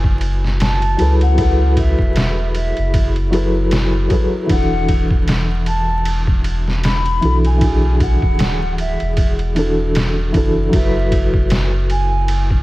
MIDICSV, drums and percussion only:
0, 0, Header, 1, 2, 480
1, 0, Start_track
1, 0, Key_signature, 3, "minor"
1, 0, Tempo, 779221
1, 849, Time_signature, 4, 2, 24, 8
1, 7779, End_track
2, 0, Start_track
2, 0, Title_t, "Drums"
2, 25, Note_on_c, 9, 36, 80
2, 86, Note_off_c, 9, 36, 0
2, 129, Note_on_c, 9, 51, 67
2, 191, Note_off_c, 9, 51, 0
2, 274, Note_on_c, 9, 38, 37
2, 336, Note_off_c, 9, 38, 0
2, 371, Note_on_c, 9, 51, 84
2, 380, Note_on_c, 9, 38, 113
2, 433, Note_off_c, 9, 51, 0
2, 441, Note_off_c, 9, 38, 0
2, 506, Note_on_c, 9, 51, 41
2, 567, Note_off_c, 9, 51, 0
2, 608, Note_on_c, 9, 51, 67
2, 670, Note_off_c, 9, 51, 0
2, 746, Note_on_c, 9, 51, 39
2, 807, Note_off_c, 9, 51, 0
2, 849, Note_on_c, 9, 36, 110
2, 849, Note_on_c, 9, 51, 85
2, 911, Note_off_c, 9, 36, 0
2, 911, Note_off_c, 9, 51, 0
2, 1089, Note_on_c, 9, 36, 89
2, 1090, Note_on_c, 9, 51, 61
2, 1151, Note_off_c, 9, 36, 0
2, 1151, Note_off_c, 9, 51, 0
2, 1224, Note_on_c, 9, 36, 87
2, 1285, Note_off_c, 9, 36, 0
2, 1329, Note_on_c, 9, 51, 85
2, 1338, Note_on_c, 9, 38, 117
2, 1390, Note_off_c, 9, 51, 0
2, 1399, Note_off_c, 9, 38, 0
2, 1568, Note_on_c, 9, 51, 67
2, 1630, Note_off_c, 9, 51, 0
2, 1704, Note_on_c, 9, 51, 39
2, 1766, Note_off_c, 9, 51, 0
2, 1809, Note_on_c, 9, 36, 109
2, 1810, Note_on_c, 9, 51, 88
2, 1871, Note_off_c, 9, 36, 0
2, 1871, Note_off_c, 9, 51, 0
2, 1946, Note_on_c, 9, 51, 39
2, 2007, Note_off_c, 9, 51, 0
2, 2050, Note_on_c, 9, 51, 66
2, 2112, Note_off_c, 9, 51, 0
2, 2287, Note_on_c, 9, 51, 84
2, 2296, Note_on_c, 9, 38, 115
2, 2348, Note_off_c, 9, 51, 0
2, 2357, Note_off_c, 9, 38, 0
2, 2526, Note_on_c, 9, 51, 64
2, 2528, Note_on_c, 9, 36, 96
2, 2588, Note_off_c, 9, 51, 0
2, 2590, Note_off_c, 9, 36, 0
2, 2768, Note_on_c, 9, 51, 83
2, 2769, Note_on_c, 9, 36, 98
2, 2830, Note_off_c, 9, 51, 0
2, 2831, Note_off_c, 9, 36, 0
2, 3009, Note_on_c, 9, 36, 82
2, 3009, Note_on_c, 9, 51, 62
2, 3070, Note_off_c, 9, 51, 0
2, 3071, Note_off_c, 9, 36, 0
2, 3145, Note_on_c, 9, 36, 94
2, 3206, Note_off_c, 9, 36, 0
2, 3250, Note_on_c, 9, 51, 90
2, 3258, Note_on_c, 9, 38, 109
2, 3311, Note_off_c, 9, 51, 0
2, 3320, Note_off_c, 9, 38, 0
2, 3489, Note_on_c, 9, 51, 66
2, 3550, Note_off_c, 9, 51, 0
2, 3729, Note_on_c, 9, 51, 84
2, 3791, Note_off_c, 9, 51, 0
2, 3864, Note_on_c, 9, 36, 88
2, 3926, Note_off_c, 9, 36, 0
2, 3969, Note_on_c, 9, 51, 67
2, 4030, Note_off_c, 9, 51, 0
2, 4112, Note_on_c, 9, 38, 38
2, 4174, Note_off_c, 9, 38, 0
2, 4210, Note_on_c, 9, 51, 84
2, 4219, Note_on_c, 9, 38, 109
2, 4272, Note_off_c, 9, 51, 0
2, 4280, Note_off_c, 9, 38, 0
2, 4347, Note_on_c, 9, 51, 39
2, 4408, Note_off_c, 9, 51, 0
2, 4450, Note_on_c, 9, 51, 62
2, 4512, Note_off_c, 9, 51, 0
2, 4587, Note_on_c, 9, 51, 38
2, 4648, Note_off_c, 9, 51, 0
2, 4689, Note_on_c, 9, 51, 82
2, 4690, Note_on_c, 9, 36, 111
2, 4751, Note_off_c, 9, 51, 0
2, 4752, Note_off_c, 9, 36, 0
2, 4930, Note_on_c, 9, 36, 82
2, 4930, Note_on_c, 9, 51, 64
2, 4992, Note_off_c, 9, 36, 0
2, 4992, Note_off_c, 9, 51, 0
2, 5065, Note_on_c, 9, 36, 93
2, 5127, Note_off_c, 9, 36, 0
2, 5168, Note_on_c, 9, 51, 89
2, 5176, Note_on_c, 9, 38, 117
2, 5229, Note_off_c, 9, 51, 0
2, 5238, Note_off_c, 9, 38, 0
2, 5410, Note_on_c, 9, 51, 65
2, 5472, Note_off_c, 9, 51, 0
2, 5544, Note_on_c, 9, 51, 39
2, 5606, Note_off_c, 9, 51, 0
2, 5648, Note_on_c, 9, 51, 77
2, 5649, Note_on_c, 9, 36, 99
2, 5709, Note_off_c, 9, 51, 0
2, 5711, Note_off_c, 9, 36, 0
2, 5785, Note_on_c, 9, 51, 41
2, 5847, Note_off_c, 9, 51, 0
2, 5889, Note_on_c, 9, 51, 67
2, 5951, Note_off_c, 9, 51, 0
2, 6129, Note_on_c, 9, 51, 82
2, 6138, Note_on_c, 9, 38, 110
2, 6191, Note_off_c, 9, 51, 0
2, 6199, Note_off_c, 9, 38, 0
2, 6370, Note_on_c, 9, 36, 91
2, 6370, Note_on_c, 9, 51, 64
2, 6431, Note_off_c, 9, 36, 0
2, 6431, Note_off_c, 9, 51, 0
2, 6610, Note_on_c, 9, 36, 112
2, 6610, Note_on_c, 9, 51, 84
2, 6671, Note_off_c, 9, 36, 0
2, 6671, Note_off_c, 9, 51, 0
2, 6849, Note_on_c, 9, 36, 90
2, 6850, Note_on_c, 9, 51, 61
2, 6911, Note_off_c, 9, 36, 0
2, 6911, Note_off_c, 9, 51, 0
2, 6984, Note_on_c, 9, 36, 89
2, 7045, Note_off_c, 9, 36, 0
2, 7086, Note_on_c, 9, 51, 88
2, 7094, Note_on_c, 9, 38, 115
2, 7147, Note_off_c, 9, 51, 0
2, 7156, Note_off_c, 9, 38, 0
2, 7328, Note_on_c, 9, 51, 65
2, 7390, Note_off_c, 9, 51, 0
2, 7566, Note_on_c, 9, 51, 80
2, 7627, Note_off_c, 9, 51, 0
2, 7703, Note_on_c, 9, 36, 86
2, 7764, Note_off_c, 9, 36, 0
2, 7779, End_track
0, 0, End_of_file